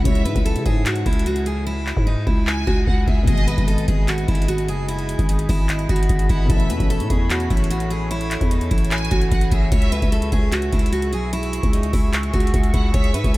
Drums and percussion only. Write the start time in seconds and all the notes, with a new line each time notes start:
0.05 kick, closed hi-hat
0.15 closed hi-hat
0.26 closed hi-hat
0.36 kick, closed hi-hat
0.46 closed hi-hat
0.56 closed hi-hat
0.66 kick, closed hi-hat
0.86 clap, closed hi-hat
0.96 closed hi-hat
1.06 kick, closed hi-hat
1.13 closed hi-hat
1.19 closed hi-hat
1.26 closed hi-hat
1.36 closed hi-hat
1.46 closed hi-hat
1.87 clap
1.97 kick
2.27 kick
2.47 clap
2.67 kick
2.87 kick
3.07 kick
3.27 kick, closed hi-hat
3.38 closed hi-hat
3.48 closed hi-hat
3.58 kick, closed hi-hat
3.68 closed hi-hat
3.78 closed hi-hat
3.88 kick, closed hi-hat
4.08 clap, closed hi-hat
4.18 closed hi-hat
4.28 kick, closed hi-hat
4.35 closed hi-hat
4.42 closed hi-hat
4.48 closed hi-hat
4.58 closed hi-hat
4.68 closed hi-hat
4.89 closed hi-hat
4.99 closed hi-hat
5.09 closed hi-hat
5.19 kick, closed hi-hat
5.29 closed hi-hat
5.39 closed hi-hat
5.49 kick, open hi-hat
5.69 clap, closed hi-hat
5.79 closed hi-hat
5.89 kick, closed hi-hat
5.96 closed hi-hat
6.03 closed hi-hat
6.09 kick, closed hi-hat
6.19 closed hi-hat
6.29 kick, closed hi-hat
6.50 kick, closed hi-hat
6.60 closed hi-hat
6.70 closed hi-hat
6.80 kick, closed hi-hat
6.90 closed hi-hat
7.00 closed hi-hat
7.10 kick, closed hi-hat
7.30 clap, closed hi-hat
7.40 closed hi-hat
7.50 kick, closed hi-hat
7.57 closed hi-hat
7.64 closed hi-hat
7.71 closed hi-hat
7.80 closed hi-hat
7.91 closed hi-hat
8.11 closed hi-hat
8.21 closed hi-hat
8.31 clap, closed hi-hat
8.41 kick, closed hi-hat
8.51 closed hi-hat
8.61 closed hi-hat
8.71 kick, closed hi-hat, open hi-hat
8.78 closed hi-hat
8.85 closed hi-hat
8.91 clap, closed hi-hat
8.98 closed hi-hat
9.05 closed hi-hat
9.11 kick, closed hi-hat
9.21 closed hi-hat
9.32 kick, closed hi-hat
9.41 closed hi-hat
9.52 kick, closed hi-hat
9.72 kick, closed hi-hat
9.82 closed hi-hat
9.92 closed hi-hat
10.02 kick, closed hi-hat
10.12 closed hi-hat
10.22 closed hi-hat
10.32 kick, closed hi-hat
10.52 clap, closed hi-hat
10.62 closed hi-hat
10.72 kick, closed hi-hat
10.79 closed hi-hat
10.86 closed hi-hat
10.93 closed hi-hat
11.02 closed hi-hat
11.13 closed hi-hat
11.33 closed hi-hat
11.43 closed hi-hat
11.53 closed hi-hat
11.63 kick, closed hi-hat
11.73 closed hi-hat
11.83 closed hi-hat
11.93 kick, open hi-hat
12.13 clap, closed hi-hat
12.23 closed hi-hat
12.34 kick, closed hi-hat
12.40 closed hi-hat
12.47 closed hi-hat
12.54 kick, closed hi-hat
12.64 closed hi-hat
12.74 kick, closed hi-hat
12.94 kick, closed hi-hat
13.04 closed hi-hat
13.14 closed hi-hat
13.24 kick, closed hi-hat
13.34 closed hi-hat